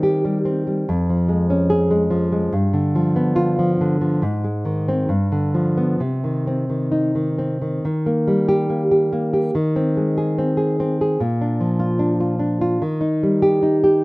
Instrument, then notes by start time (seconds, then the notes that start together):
nylon-string guitar
Already playing: D#3 G3 C4
0.03 G4
0.25 G3
0.45 C4
0.67 G3
0.89 F2
1.10 F3
1.29 G#3
1.50 C#4
1.70 G#4
1.91 G#3
2.10 F3
2.32 G#3
2.53 G2
2.73 D3
2.95 F3
3.16 B3
3.36 F4
3.59 F3
3.81 D3
4.01 F3
4.22 G#2
4.44 G#3
4.65 D#3
4.88 C4
5.09 G2
5.32 D3
5.54 F3
5.77 B3
6.00 C3
6.24 D#3
6.47 C4
6.70 D#3
6.92 D#4
7.15 D#3
7.38 C4
7.62 D#3
7.85 D#3
8.06 A#3
8.28 G3
8.49 G4
8.70 A#3
8.91 G4
9.13 A#3
9.33 G4
9.55 D#3
9.76 C4
9.97 G#3
10.18 G#4
10.38 C4
10.57 G#4
10.80 C4
11.01 G#4
11.20 A#2
11.41 D4
11.60 F3
11.80 F4
11.99 D4
12.20 F4
12.39 D4
12.61 F4
12.82 D#3
13.01 D#4
13.23 G3
13.42 G4
13.63 D#4
13.84 G4